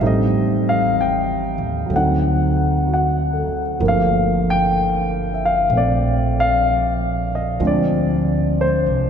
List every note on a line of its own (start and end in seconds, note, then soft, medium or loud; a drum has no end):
0.01 1.55 A1 medium
0.01 1.91 G3 soft
0.01 1.88 A3 soft
0.01 1.91 C4 soft
0.01 1.92 D#4 medium
0.07 0.63 D#5 medium
0.69 0.99 F5 medium
1.01 1.96 G5 medium
1.58 1.88 D#2 medium
1.86 3.44 D2 medium
1.86 3.78 F#3 soft
1.86 3.79 A3 soft
1.93 3.82 C4 soft
1.93 3.84 D#4 soft
1.93 2.92 F#5 medium
2.86 3.61 F#4 soft
2.94 3.80 F#5 medium
3.33 4.00 A4 soft
3.48 muted upright bass stroke soft
3.80 5.66 G1 medium
3.80 7.60 D3 medium
3.80 7.58 F3 soft
3.80 5.68 A3 soft
3.80 7.60 A#3 soft
3.88 4.43 F5 medium
4.50 5.29 G5 medium
5.34 5.41 E5 medium
5.45 5.72 F5 medium
5.69 7.56 A#1 medium
5.69 7.60 A3 soft
5.69 7.59 C4 soft
5.77 6.38 D5 medium
6.40 7.27 F5 medium
7.35 7.62 D#5 medium
7.60 8.82 D2 medium
7.60 9.10 F3 soft
7.60 9.10 G#3 soft
7.60 9.10 C4 soft
7.60 9.10 D4 soft
7.67 8.61 D5 medium
8.61 9.10 C5 medium
8.86 9.10 C2 medium